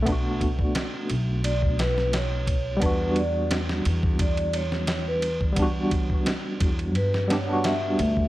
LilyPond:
<<
  \new Staff \with { instrumentName = "Vibraphone" } { \time 4/4 \key e \dorian \tempo 4 = 87 r2 d''8 b'8 cis''4 | b'8 d''8 r4 d''8 cis''8. b'8 r16 | r2 b'8 cis''8 e''4 | }
  \new Staff \with { instrumentName = "Tine electric piano" } { \time 4/4 \key e \dorian <a b d' fis'>2~ <a b d' fis'>8 r4. | <g b d' fis'>2~ <g b d' fis'>8 r4. | <g b d' fis'>2~ <g b d' fis'>8 <g b d' g'>16 <g b d' fis'>4~ <g b d' fis'>16 | }
  \new Staff \with { instrumentName = "Upright bass" } { \clef bass \time 4/4 \key e \dorian b,,4 r8 b,,2~ b,,8 | e,4. e,2~ e,8~ | e,4 r8 e,8 g,4. d,8 | }
  \new DrumStaff \with { instrumentName = "Drums" } \drummode { \time 4/4 <bd cymr>8 <bd cymr>16 bd16 <cymr sn>8 cymr8 cymr16 bd16 <cymr sn>16 sn16 <cymr sn>8 <bd cymr>8 | <bd cymr>8 cymr8 <cymr sn>16 sn16 cymr16 bd16 <bd cymr>16 cymr16 cymr16 sn16 <cymr sn>8 cymr16 bd16 | <bd cymr>8 <bd cymr>16 bd16 <cymr sn>8 <bd cymr>16 cymr16 cymr16 sn16 <cymr sn>8 <cymr sn>8 cymr16 bd16 | }
>>